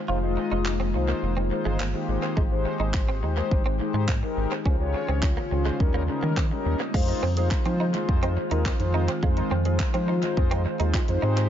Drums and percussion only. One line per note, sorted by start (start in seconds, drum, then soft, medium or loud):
0.66 clap loud
1.80 clap loud
2.37 kick loud
2.94 kick loud
2.94 clap loud
3.51 kick loud
4.08 kick loud
4.08 clap loud
4.66 kick loud
5.23 kick loud
5.23 clap loud
5.80 kick loud
6.37 kick loud
6.37 clap loud
6.94 kick loud
6.94 crash medium
7.08 closed hi-hat medium
7.37 closed hi-hat medium
7.51 kick loud
7.51 clap loud
7.65 closed hi-hat medium
7.94 closed hi-hat medium
8.09 kick loud
8.23 closed hi-hat medium
8.51 closed hi-hat medium
8.65 kick loud
8.65 clap loud
8.80 closed hi-hat medium
9.08 closed hi-hat medium
9.23 kick loud
9.37 closed hi-hat medium
9.65 closed hi-hat medium
9.80 kick loud
9.80 clap loud
9.94 closed hi-hat medium
10.23 closed hi-hat medium
10.37 kick loud
10.51 closed hi-hat medium
10.80 closed hi-hat medium
10.94 kick medium
10.94 clap loud
11.08 closed hi-hat medium
11.37 closed hi-hat medium